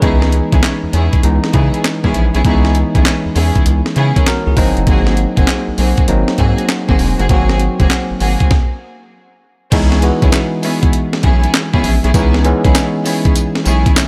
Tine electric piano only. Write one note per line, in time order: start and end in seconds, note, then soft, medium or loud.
0.00 0.91 E3 medium
0.00 0.92 G#3 medium
0.00 0.92 B3 medium
0.00 0.92 D#4 medium
0.00 0.21 G#4 medium
0.00 0.21 B4 medium
1.23 2.13 E3 medium
1.23 2.13 G#3 medium
1.23 2.13 B3 medium
1.23 2.13 D#4 medium
2.45 3.34 E3 medium
2.45 3.34 G#3 medium
2.45 3.34 B3 medium
2.45 3.34 D#4 medium
4.17 4.26 A#4 medium
4.17 4.26 C#5 medium
4.27 4.46 F#4 medium
4.27 4.46 A#4 medium
4.47 4.76 E4 medium
4.47 4.76 G#4 medium
4.57 5.56 F#3 medium
4.57 5.56 A#3 medium
4.57 5.56 C4 medium
4.57 5.56 D#4 loud
6.08 6.97 F#3 medium
6.08 6.98 A#3 medium
6.08 6.98 C4 medium
6.08 6.98 D#4 medium
7.30 8.19 F#3 medium
7.30 8.19 A#3 medium
7.30 8.19 C4 medium
7.30 8.19 F#4 medium
9.72 9.97 E3 medium
9.72 9.97 G#3 medium
9.72 9.97 B3 medium
9.72 9.97 D#4 medium
10.02 10.91 E3 medium
10.02 10.92 G#3 medium
10.02 10.92 B3 medium
10.02 10.92 F#4 medium
12.14 12.39 E3 medium
12.14 12.39 G#3 medium
12.14 12.39 B3 medium
12.14 12.40 D#4 medium
12.45 13.34 E3 medium
12.45 13.34 G#3 medium
12.45 13.34 B3 medium
12.45 13.34 C#4 loud